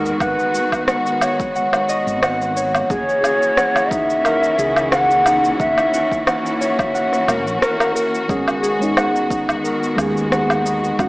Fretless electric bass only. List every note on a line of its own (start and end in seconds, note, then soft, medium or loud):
0.00 0.12 D#2 medium
0.20 0.33 G#1 medium
2.07 2.82 G#1 medium
2.90 3.02 F#1 loud
4.59 5.52 C#2 medium
5.60 5.72 F#1 medium
7.28 7.46 E1 medium
7.46 7.57 A#1 medium
8.29 8.42 G#1 medium
9.98 10.91 D#2 medium
10.99 11.09 G#1 medium